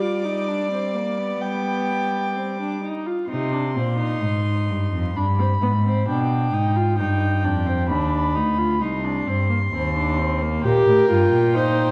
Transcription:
Already playing: G3 D5 D6
0.01 F4
0.24 D#4
0.48 D4
0.71 C4
0.95 A#3
1.18 B3
1.41 G3 G5 D6
2.36 C4
2.60 D4
2.83 D#4
3.06 F4
3.29 C3 D#4 C6
3.53 D4
3.76 A#2 C4
3.99 D#4
4.23 G#2
4.69 G2
4.93 F2
5.16 G2 D4 B5
5.39 C4
5.62 G#2 B3
5.85 C4
6.08 B2 D4 G5
6.53 G#2 D#4
6.76 F4
6.98 G2 D#4 G5
7.44 F2 D4
7.67 C4
7.89 D#2 D4 B5
8.35 D2 D#4
8.58 F4
8.81 C2 D#4 C6
9.04 D4
9.27 G2 C4
9.50 A#3
9.73 D#2 C4
9.96 D4
10.18 C4
10.41 A#3
10.64 A#2 G4 A#4 G5
10.86 A2
11.10 G2 F4
11.32 A#2
11.55 D#4 C5

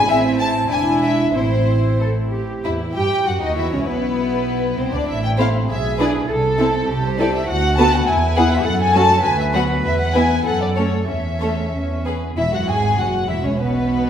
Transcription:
0.09 A1 C4 E4 E5
0.40 A5
0.71 E1 D4 E4 G#5
1.03 E5
1.35 A1 C4 E4 C5
2.00 A4
2.33 G4
2.65 E2 E4 E5
2.95 G2 G4 G5
3.26 F#2 F#4 F#5
3.41 D#2 D#4 D#5
3.56 E2 E4 E5
3.72 C#2 C#4 C#5
3.86 B1 B3 E4 B4
4.78 C2 C4 C5
4.93 D2 D4 D5
5.08 A1 E4 E5
5.24 G5
5.38 A3 C4 E4 C5 F5
5.68 B1 G#4 E5
5.99 D4 E4 G#4 B4 D5
6.29 C2 A4
6.59 C4 E4 A4
6.89 C2 G4
7.05 C5
7.19 C4 E4 A4 D5
7.34 E5
7.48 D2 F#4 F#5
7.77 B3 F#4 A4 B4 A5
7.93 F#5
8.07 E2 E4 G#5
8.36 B3 E4 G#4 B4 F#5
8.52 E5
8.65 F#2 A4 F#5
8.81 G#5
8.94 F#3 C#4 F#4 A4 A5
9.23 D2 B4 G#5
9.40 E5
9.54 F#3 B3 F#4 B4 F#5
9.85 E2 E5
10.01 F#5
10.14 B3 E4 B4 G#5
10.45 F#2 A4 F#5
10.63 D5
10.76 A3 C#4 A4 C#5
11.09 E2 C#4 E5
11.41 A3 C#4 A4 C#5
11.74 E2 C#4
12.05 B3 G#4 B4
12.37 E1 E2 E4 E5
12.52 F#2 F#4 F#5
12.67 G#1 G#2 G#4 G#5
12.98 F#1 F#2 F#4 F#5
13.28 E1 E2 E4 E5
13.43 C#2 C#4 C#5
13.58 B1 B2 B3 B4

